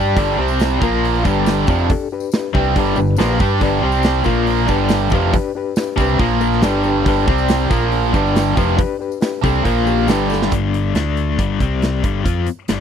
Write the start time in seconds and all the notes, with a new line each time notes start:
Already playing: G2 G3 D4 G4 D5 B5
0.05 tambourine
0.15 G1 G2 D3 G3 D4 G4 D5, kick, open hi-hat
0.27 tambourine
0.38 C2 C3 G3 C4 G4 C5
0.48 tambourine
0.60 snare, open hi-hat, tambourine
0.71 tambourine
0.80 A#1 A#2 F3 A#3 F4 A#4, kick, tambourine
0.92 tambourine
1.04 open hi-hat
1.15 tambourine
1.24 G1 G2 D3 G3 D4 G4, kick, tambourine
1.28 B4
1.35 tambourine
1.46 snare, open hi-hat, tambourine
1.67 F1 F2 C3 F3 D4 G4 D5, kick, tambourine
1.78 tambourine
1.90 D4 G4 A4, kick, open hi-hat
2.00 tambourine
2.11 D4 G4 B4, tambourine
2.20 tambourine
2.32 D4 G4 B4, snare, open hi-hat, tambourine
2.42 tambourine
2.53 C2 C3 G3 C4 D4 G4 B4, kick
2.64 tambourine
2.75 G1 G2 D3 G3 D4 G4, kick, open hi-hat, tambourine
2.79 B4
2.86 tambourine
2.96 G1 G2 D3 D4 G4 B4, tambourine
3.06 tambourine
3.16 A#1 A#2 F3 A#3 D4 G4 B4 G5, snare, open hi-hat, tambourine
3.39 G2 G3 D4 G4 B4 B5, kick, tambourine
3.60 G1 G2 D3 G3 D4 G4 B4, kick, open hi-hat, tambourine
3.71 tambourine
3.81 C2 C3 G3 C4 G4 C5
3.92 tambourine
4.03 snare, open hi-hat, tambourine
4.14 tambourine
4.24 A#1 A#2 F3 A#3 F4 A#4, kick, tambourine
4.35 tambourine
4.47 open hi-hat
4.57 tambourine
4.67 G1 G2 D3 G3 D4 G4 B4, kick, tambourine
4.78 tambourine
4.89 snare, open hi-hat, tambourine
5.10 F1 F2 C3 F3 D4 G4, kick, tambourine
5.14 B4
5.21 tambourine
5.33 D4 G4 B4, kick, open hi-hat, tambourine
5.55 D4 G4 B4
5.76 D4 G4 B4, snare, open hi-hat, tambourine
5.96 C2 C3 G3 C4 D4, kick, tambourine
6.01 G4 B4
6.09 tambourine
6.19 A#1 A#2 F3 A#3 F4 A#4, kick, open hi-hat
6.30 tambourine
6.41 A#3 F4 A#4, tambourine
6.52 snare, tambourine
6.62 G1 G2 D3 G3 D4 G4 B4 G5, snare, open hi-hat, tambourine
6.84 D4 G4 B4 B5, tambourine
7.06 G1 G2 D3 G3 D4 G4 B4, kick, open hi-hat, tambourine
7.16 tambourine
7.26 C2 C3 G3 C4 G4 C5, kick
7.38 tambourine
7.48 snare, open hi-hat, tambourine
7.60 tambourine
7.69 A#1 A#2 F3 A#3 F4 A#4, kick, tambourine
7.82 tambourine
7.92 open hi-hat
8.04 tambourine
8.12 G1 G2 D3 G3 D4 G4 B4, kick, tambourine
8.26 tambourine
8.35 snare, open hi-hat, tambourine
8.57 F1 F2 C3 F3 D4 G4 B4, kick, tambourine
8.69 tambourine
8.77 D4 G4 B4, kick, open hi-hat
8.81 tambourine
8.99 D4 G4 B4, tambourine
9.12 tambourine
9.21 D4 G4 B4, snare, open hi-hat, tambourine
9.43 C2 C3 G3 C4 D4 G4 A4, kick, tambourine
9.55 tambourine
9.64 A#1 A#2 F3 A#3 F4 A#4, kick, open hi-hat, tambourine
9.77 tambourine
9.86 A#3 F4 G4, tambourine
9.98 tambourine
10.07 G1 G2 D3 G3 D4 G4 B4, snare, open hi-hat, tambourine
10.20 tambourine
10.29 D4 G4 A4, snare, tambourine
10.41 snare, tambourine
10.52 G1 G2 D3 G3, kick, closed hi-hat
10.74 closed hi-hat
10.95 D2 D3 A3 D4, snare, closed hi-hat
11.17 closed hi-hat
11.39 G1 G2 D3 G3, kick, closed hi-hat
11.60 C2 C3 G3 C4, kick, closed hi-hat
11.82 snare, closed hi-hat
12.04 G1 G2 D3 G3, kick, closed hi-hat
12.24 F2 F3 C4 F4, kick, closed hi-hat
12.46 muted overdriven electric guitar stroke, muted fingered electric bass stroke, closed hi-hat
12.68 G1 G2 D3 G3, snare, closed hi-hat